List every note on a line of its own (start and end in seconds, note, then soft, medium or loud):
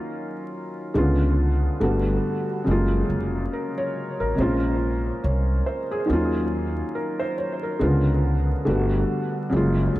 0.00 0.90 D#3 medium
0.00 0.91 F#3 medium
0.00 0.92 A#3 medium
0.00 0.93 C#4 medium
0.00 0.94 F4 medium
0.00 0.96 A#4 medium
0.94 1.66 C#2 medium
0.94 1.79 D3 medium
0.94 1.80 G#3 medium
0.94 1.81 B3 medium
0.94 1.81 C#4 medium
0.94 1.82 F4 medium
1.80 2.17 G1 loud
1.80 2.66 D3 medium
1.80 2.66 G3 medium
1.80 2.67 A3 medium
1.80 2.67 B3 medium
1.80 2.68 F#4 medium
2.64 3.02 F#1 medium
2.64 4.33 C#3 medium
2.64 4.34 F#3 medium
2.64 4.35 G#3 medium
2.69 4.36 A#3 medium
2.69 4.37 F4 medium
3.10 3.45 F1 medium
3.53 3.76 A#4 medium
3.78 4.18 C#5 medium
4.20 4.35 A1 medium
4.20 4.60 A#4 medium
4.35 5.09 A#1 loud
4.35 4.44 C3 medium
4.35 6.05 G#3 medium
4.35 6.06 A#3 medium
4.40 6.07 C#4 medium
4.40 6.08 F4 medium
4.40 5.65 C5 medium
5.24 5.59 C2 loud
5.24 5.64 C#5 medium
5.66 5.90 C5 medium
5.91 6.32 G#4 medium
6.06 6.81 D#2 loud
6.06 7.75 D#3 medium
6.06 7.76 F#3 medium
6.06 7.77 A#3 medium
6.11 7.78 C#4 medium
6.11 7.79 F4 medium
6.95 7.18 A#4 medium
7.20 7.37 C5 medium
7.38 7.61 C#5 medium
7.63 8.03 A#4 medium
7.79 8.52 C#2 medium
7.79 8.64 D3 medium
7.79 8.66 G#3 medium
7.79 8.66 B3 medium
7.79 8.67 C#4 medium
7.79 8.67 F4 medium
8.65 9.02 G1 medium
8.65 9.51 D3 medium
8.65 9.52 G3 medium
8.65 9.52 A3 medium
8.65 9.52 B3 medium
8.65 9.53 F#4 medium
9.49 9.88 F#1 medium
9.49 10.00 C#3 medium
9.49 10.00 F#3 medium
9.49 10.00 G#3 medium
9.54 10.00 A#3 medium
9.54 10.00 F4 medium
9.96 10.00 F1 medium